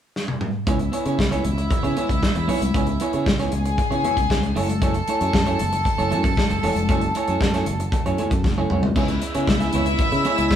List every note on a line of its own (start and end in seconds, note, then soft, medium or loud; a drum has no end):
0.16 snare medium
0.28 high tom medium
0.41 mid tom medium
0.67 0.89 C#2 medium
0.67 0.83 B3 medium
0.67 3.49 E4 medium
0.67 0.79 E4 medium
0.67 0.79 G#4 medium
0.67 0.79 C#5 medium
0.67 3.49 E5 medium
0.67 kick loud
0.67 closed hi-hat medium
0.79 muted clean electric guitar stroke soft
0.79 closed hi-hat soft
0.92 1.05 B3 medium
0.92 1.05 E4 medium
0.92 1.05 G#4 medium
0.92 1.04 C#5 medium
0.92 closed hi-hat medium
1.06 1.17 C#3 medium
1.06 1.17 B3 soft
1.06 1.17 E4 medium
1.06 1.18 G#4 medium
1.06 1.18 C#5 medium
1.06 closed hi-hat soft
1.19 1.41 C#2 medium
1.19 muted clean electric guitar stroke soft
1.19 kick medium
1.19 snare loud
1.19 high conga medium
1.31 1.43 B3 medium
1.31 1.44 E4 medium
1.31 1.44 G#4 medium
1.31 1.44 C#5 medium
1.31 closed hi-hat soft
1.44 1.67 C#2 medium
1.44 muted clean electric guitar stroke soft
1.44 closed hi-hat medium
1.44 muted conga soft
1.44 low conga medium
1.58 muted clean electric guitar stroke soft
1.58 closed hi-hat soft
1.71 muted clean electric guitar stroke soft
1.71 kick loud
1.71 closed hi-hat medium
1.83 1.95 C#3 medium
1.83 1.95 B3 soft
1.83 1.96 E4 medium
1.83 1.96 G#4 soft
1.83 1.96 C#5 medium
1.83 closed hi-hat soft
1.96 2.13 B3 medium
1.96 2.09 E4 medium
1.96 2.09 G#4 medium
1.96 2.08 C#5 medium
1.96 closed hi-hat soft
1.96 muted conga soft
2.09 2.21 C#2 medium
2.09 muted clean electric guitar stroke soft
2.09 kick medium
2.09 closed hi-hat soft
2.23 muted clean electric guitar stroke soft
2.23 kick medium
2.23 snare loud
2.23 high conga medium
2.35 2.47 E2 medium
2.35 muted clean electric guitar stroke soft
2.35 closed hi-hat soft
2.48 2.60 B1 medium
2.48 2.64 B3 medium
2.48 2.61 E4 loud
2.48 2.61 G#4 medium
2.48 2.60 C#5 loud
2.48 open hi-hat medium
2.61 2.73 C2 medium
2.61 muted clean electric guitar stroke soft
2.61 closed hi-hat medium
2.61 high conga medium
2.74 2.97 C#2 medium
2.74 2.91 B3 medium
2.74 2.88 E4 medium
2.74 2.87 G#4 medium
2.74 2.86 C#5 medium
2.74 kick loud
2.74 closed hi-hat medium
2.74 muted conga soft
2.87 muted clean electric guitar stroke soft
2.87 closed hi-hat soft
3.00 3.13 B3 medium
3.00 3.14 E4 medium
3.00 3.13 G#4 medium
3.00 3.12 C#5 medium
3.00 closed hi-hat medium
3.13 3.25 C#3 medium
3.13 3.26 B3 soft
3.13 3.26 E4 medium
3.13 3.26 G#4 medium
3.13 3.26 C#5 medium
3.13 closed hi-hat soft
3.26 3.48 C#2 medium
3.26 muted clean electric guitar stroke soft
3.26 kick loud
3.26 snare loud
3.26 high conga medium
3.39 3.51 B3 medium
3.39 3.52 E4 medium
3.39 3.52 G#4 medium
3.39 3.52 C#5 medium
3.39 snare soft
3.39 closed hi-hat soft
3.52 3.75 C#2 medium
3.52 4.54 G#4 medium
3.52 4.54 G#5 medium
3.52 muted clean electric guitar stroke soft
3.52 closed hi-hat medium
3.52 muted conga soft
3.52 low conga medium
3.65 muted clean electric guitar stroke soft
3.65 closed hi-hat soft
3.78 muted clean electric guitar stroke soft
3.78 kick medium
3.78 closed hi-hat medium
3.91 4.02 C#3 medium
3.91 4.03 B3 soft
3.91 4.03 E4 soft
3.91 4.04 G#4 soft
3.91 4.04 C#5 medium
3.91 closed hi-hat soft
4.03 4.20 B3 medium
4.03 4.17 E4 medium
4.03 4.16 G#4 medium
4.03 4.16 C#5 medium
4.03 closed hi-hat soft
4.03 muted conga soft
4.03 low conga medium
4.17 4.28 C#2 medium
4.17 muted clean electric guitar stroke soft
4.17 kick medium
4.17 closed hi-hat soft
4.30 4.52 C#2 medium
4.30 muted clean electric guitar stroke soft
4.30 kick loud
4.30 snare loud
4.30 high conga medium
4.43 muted clean electric guitar stroke soft
4.43 closed hi-hat soft
4.56 5.00 F#1 medium
4.56 4.72 A3 medium
4.56 4.69 E4 medium
4.56 4.68 G#4 medium
4.56 8.66 A4 medium
4.56 4.68 C#5 loud
4.56 8.66 A5 medium
4.56 open hi-hat medium
4.69 muted clean electric guitar stroke soft
4.69 closed hi-hat soft
4.69 high conga medium
4.82 4.98 A3 medium
4.82 4.95 E4 medium
4.82 4.94 G#4 medium
4.82 4.94 C#5 medium
4.82 kick loud
4.82 closed hi-hat medium
4.82 muted conga soft
4.94 muted clean electric guitar stroke soft
4.94 closed hi-hat soft
5.08 5.21 A3 medium
5.08 5.21 E4 medium
5.08 5.21 G#4 medium
5.08 5.20 C#5 medium
5.08 closed hi-hat medium
5.21 5.32 F#2 medium
5.21 5.33 A3 soft
5.21 5.33 E4 soft
5.21 5.33 G#4 medium
5.21 5.34 C#5 medium
5.21 closed hi-hat soft
5.33 5.56 F#2 medium
5.33 muted clean electric guitar stroke soft
5.33 kick loud
5.33 snare loud
5.33 high conga medium
5.47 5.59 A3 medium
5.47 5.59 E4 medium
5.47 5.59 G#4 medium
5.47 5.59 C#5 medium
5.47 closed hi-hat soft
5.59 5.82 F#1 medium
5.59 muted clean electric guitar stroke soft
5.59 closed hi-hat medium
5.59 muted conga medium
5.59 low conga medium
5.73 muted clean electric guitar stroke soft
5.73 closed hi-hat soft
5.85 muted clean electric guitar stroke soft
5.85 kick medium
5.85 closed hi-hat medium
5.98 6.13 F#1 medium
5.98 6.10 A3 soft
5.98 6.10 E4 soft
5.98 6.11 G#4 soft
5.98 6.11 C#5 medium
5.98 closed hi-hat soft
6.11 6.34 F#2 medium
6.11 6.27 A3 medium
6.11 6.23 E4 medium
6.11 6.23 G#4 medium
6.11 6.23 C#5 medium
6.11 closed hi-hat soft
6.11 muted conga soft
6.24 muted clean electric guitar stroke soft
6.24 kick medium
6.24 closed hi-hat medium
6.37 muted clean electric guitar stroke soft
6.37 kick loud
6.37 snare medium
6.37 high conga medium
6.50 6.61 F#1 medium
6.50 muted clean electric guitar stroke soft
6.50 closed hi-hat soft
6.63 6.74 E1 loud
6.63 6.79 A3 medium
6.63 6.76 E4 medium
6.63 6.76 G#4 medium
6.63 6.75 C#5 medium
6.63 open hi-hat medium
6.75 6.89 F1 medium
6.75 muted clean electric guitar stroke soft
6.75 closed hi-hat soft
6.75 high conga medium
6.89 7.11 F#1 loud
6.89 7.05 A3 medium
6.89 7.02 E4 medium
6.89 7.01 G#4 medium
6.89 7.01 C#5 medium
6.89 kick loud
6.89 closed hi-hat medium
7.01 muted clean electric guitar stroke soft
7.01 closed hi-hat soft
7.15 7.28 A3 medium
7.15 7.28 E4 medium
7.15 7.27 G#4 medium
7.15 7.27 C#5 medium
7.15 closed hi-hat medium
7.28 7.39 F#2 medium
7.28 7.40 A3 medium
7.28 7.40 E4 medium
7.28 7.41 G#4 medium
7.28 7.41 C#5 medium
7.28 closed hi-hat soft
7.41 7.63 F#2 medium
7.41 muted clean electric guitar stroke soft
7.41 kick loud
7.41 snare loud
7.41 high conga medium
7.54 7.66 A3 medium
7.54 7.66 E4 medium
7.54 7.66 G#4 medium
7.54 7.67 C#5 medium
7.54 snare soft
7.54 closed hi-hat soft
7.66 7.89 F#1 medium
7.66 muted clean electric guitar stroke soft
7.66 closed hi-hat medium
7.66 muted conga medium
7.66 low conga medium
7.80 muted clean electric guitar stroke soft
7.80 closed hi-hat soft
7.92 muted fingered electric bass stroke soft
7.92 muted clean electric guitar stroke soft
7.92 kick loud
7.92 closed hi-hat medium
8.06 8.17 F#2 medium
8.06 8.17 A3 soft
8.06 8.18 E4 medium
8.06 8.18 G#4 soft
8.06 8.18 C#5 medium
8.06 closed hi-hat soft
8.18 8.34 A3 medium
8.18 8.31 E4 medium
8.18 8.31 G#4 medium
8.18 8.30 C#5 medium
8.18 closed hi-hat soft
8.18 muted conga medium
8.18 low conga medium
8.31 8.46 F#2 medium
8.31 muted clean electric guitar stroke soft
8.31 kick medium
8.31 closed hi-hat soft
8.44 8.66 F#1 medium
8.44 muted clean electric guitar stroke soft
8.44 kick medium
8.44 snare medium
8.44 high conga medium
8.58 8.70 A3 medium
8.58 8.70 E4 medium
8.58 8.70 G#4 medium
8.58 8.71 C#5 medium
8.70 8.92 C2 medium
8.70 8.83 A3 medium
8.70 8.83 E4 medium
8.70 8.83 G#4 medium
8.70 8.82 C#5 medium
8.70 mid tom medium
8.83 muted clean electric guitar stroke soft
8.83 floor tom medium
8.83 high conga medium
8.95 9.18 C#2 medium
8.95 10.56 C#3 medium
8.95 10.56 G#3 medium
8.95 10.56 B3 medium
8.95 9.12 B3 medium
8.95 10.56 E4 medium
8.95 9.09 E4 medium
8.95 9.09 G#4 medium
8.95 9.08 C#5 medium
8.95 10.56 E5 loud
8.95 kick loud
8.95 crash medium
9.08 muted clean electric guitar stroke soft
9.08 closed hi-hat soft
9.22 muted clean electric guitar stroke soft
9.22 closed hi-hat medium
9.34 9.46 C#3 medium
9.34 9.47 B3 soft
9.34 9.47 E4 medium
9.34 9.47 G#4 medium
9.34 9.47 C#5 soft
9.34 closed hi-hat soft
9.47 9.69 C#2 medium
9.47 muted clean electric guitar stroke soft
9.47 kick medium
9.47 snare loud
9.47 high conga medium
9.60 9.73 B3 soft
9.60 9.73 E4 soft
9.60 9.73 G#4 medium
9.60 9.73 E5 medium
9.60 snare soft
9.60 closed hi-hat soft
9.73 9.95 C#2 medium
9.73 9.90 B3 medium
9.73 9.86 E4 medium
9.73 9.86 G#4 medium
9.73 9.85 C#5 loud
9.73 closed hi-hat medium
9.73 muted conga medium
9.73 low conga medium
9.86 muted clean electric guitar stroke soft
9.86 closed hi-hat soft
9.99 muted fingered electric bass stroke soft
9.99 muted clean electric guitar stroke soft
9.99 kick loud
9.99 closed hi-hat medium
10.12 10.23 C#3 loud
10.12 muted clean electric guitar stroke soft
10.12 closed hi-hat soft
10.25 10.38 B3 medium
10.25 10.37 E4 medium
10.25 10.37 G#4 medium
10.25 10.36 C#5 medium
10.25 closed hi-hat soft
10.25 muted conga medium
10.37 10.49 C#2 medium
10.37 10.49 B3 soft
10.37 10.50 E4 soft
10.37 10.50 G#4 medium
10.37 10.50 C#5 medium
10.37 closed hi-hat medium
10.50 muted clean electric guitar stroke soft
10.50 kick medium
10.50 snare loud
10.50 high conga medium